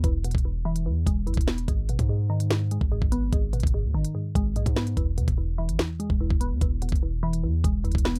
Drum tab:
HH |x-----x-x-x----------x--------x-----x-x-x----x--|x-----x--x-----------x--------x-----------x-----|x-----x-x-x----------x--------x-----x--x-----x--|x-----x--x-----------x--------x-----------x-----|
SD |------------------------------------------o-----|------------------------o-----------------------|------------------------------------------o-----|------------------------o-----------------------|
BD |o--------o--------------------o--------o--------|o--------o-----------------------o-----o--------|o--------o--------------------o--------o--------|o--------o-----------------------o-----o--------|

HH |x-----x-x-x----------x--------x-----x-x-x----x--|
SD |------------------------------------------o-----|
BD |o--------o--------------------o--------o--------|